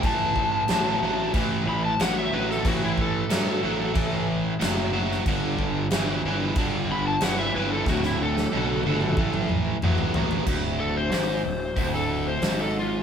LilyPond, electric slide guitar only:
\new Staff \with { instrumentName = "Electric slide guitar" } { \time 4/4 \key d \major \tempo 4 = 92 a''2 r8 b''16 a''16 fis''16 e''16 b'16 a'16 | fis'16 e'16 a'2 r4. | r2 r8 b''16 a''16 fis''16 e''16 b'16 a'16 | fis'16 e'16 a'2 r4. |
r8 a'16 c''4. a'8 c''8 a'16 f'8 | }